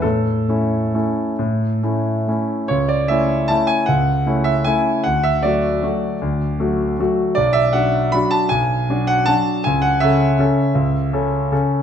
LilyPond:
\new Staff \with { instrumentName = "Grand piano" } { \time 3/4 \key a \major \tempo 4 = 154 << { a'2.~ | a'2~ a'8 r8 | cis''8 d''8 e''4 a''8 gis''8 | fis''4. e''8 gis''4 |
fis''8 e''8 d''2~ | d''2~ d''8 r8 | d''8 e''8 fis''4 b''8 a''8 | gis''4. fis''8 a''4 |
gis''8 fis''8 e''2~ | e''2~ e''8 r8 | } \\ { a,4 <a cis' e'>4 <a cis' e'>4 | a,4 <a cis' e'>4 <a cis' e'>4 | cis,4 <a cis' e'>4 <a cis' e'>4 | cis,4 <a cis' e'>4 <a cis' e'>4 |
d,4 <fis a fis'>4 <fis a fis'>4 | d,4 <fis a fis'>4 <fis a fis'>4 | b,,4 <fis d' fis'>4 <fis d' fis'>4 | b,,4 <fis d' fis'>4 <fis d' fis'>4 |
cis,4 <cis cis' a'>4 <cis cis' a'>4 | cis,4 <cis cis' a'>4 <cis cis' a'>4 | } >> }